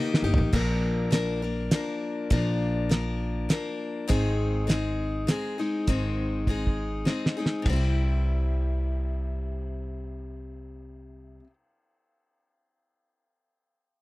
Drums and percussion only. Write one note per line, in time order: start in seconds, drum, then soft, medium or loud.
0.14 snare medium
0.34 floor tom loud
0.53 kick loud
0.53 crash medium
1.12 snare medium
1.12 closed hi-hat medium
1.71 snare medium
1.71 closed hi-hat medium
2.30 kick loud
2.30 closed hi-hat medium
2.91 snare medium
2.91 closed hi-hat medium
3.50 snare medium
3.50 closed hi-hat medium
4.10 kick loud
4.10 closed hi-hat medium
4.70 snare medium
4.70 closed hi-hat medium
5.28 snare medium
5.28 closed hi-hat medium
5.88 kick loud
5.88 closed hi-hat medium
6.47 kick medium
6.67 kick soft
7.06 snare medium
7.26 snare medium
7.46 snare medium
7.66 kick medium
7.66 ride medium